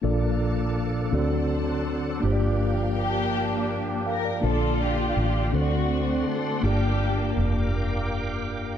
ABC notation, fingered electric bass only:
X:1
M:6/8
L:1/8
Q:3/8=55
K:Bb
V:1 name="Fingered electric bass" clef=bass
B,,,3 D,,3 | G,,,6 | B,,,2 A,,, D,,2 z | G,,,2 F,,,4 |]